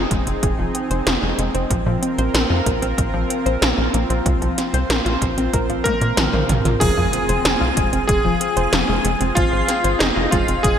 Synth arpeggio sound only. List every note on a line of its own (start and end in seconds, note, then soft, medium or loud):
0.11 0.24 G#3 medium
0.27 0.34 C4 loud
0.43 0.56 G#4 loud
0.59 0.71 F3 loud
0.75 0.90 C4 medium
0.91 0.98 C5 loud
1.07 1.14 F3 loud
1.23 1.35 G#3 medium
1.39 1.51 G#3 medium
1.55 1.62 C4 loud
1.71 1.83 F3 loud
1.86 1.99 F3 loud
2.03 2.18 C4 medium
2.18 2.26 C5 loud
2.34 2.42 A#4 loud
2.50 2.63 F4 loud
2.66 2.79 A#3 medium
2.82 2.90 C4 loud
2.98 3.11 A#4 loud
3.14 3.27 F3 loud
3.30 3.45 C4 medium
3.46 3.54 C5 loud
3.62 3.70 F3 loud
3.78 3.91 A#3 medium
3.94 4.07 A#3 medium
4.10 4.17 C4 loud
4.26 4.38 F3 loud
4.42 4.54 F3 loud
4.58 4.73 C4 medium
4.74 4.81 C5 loud
4.90 4.97 A#4 loud
5.06 5.18 F4 loud
5.22 5.34 A#3 medium
5.38 5.45 C4 loud
5.53 5.66 A#4 loud
5.70 5.82 F3 loud
5.86 6.00 A#3 loud
6.01 6.17 A#3 loud
6.17 6.30 F3 loud
6.33 6.41 A#3 loud
6.49 6.57 F5 medium
6.65 6.80 F4 medium
6.81 6.94 F3 loud
6.97 7.10 F3 loud
7.13 7.28 C4 medium
7.29 7.37 C5 loud
7.45 7.53 G#4 loud
7.61 7.74 F4 loud
7.77 7.90 G#3 medium
7.93 8.00 C4 loud
8.09 8.21 G#4 loud
8.25 8.37 F3 loud
8.41 8.56 C4 medium
8.57 8.64 C5 loud
8.73 8.80 F3 loud
8.89 9.01 G#3 medium
9.05 9.17 G#3 medium
9.20 9.28 C4 loud
9.36 9.49 F3 loud
9.52 9.65 F3 loud
9.69 9.84 C4 medium
9.84 9.92 C5 loud
10.00 10.08 G#4 loud
10.16 10.29 F4 loud
10.32 10.45 G#3 medium
10.48 10.56 C4 loud
10.64 10.77 G#4 loud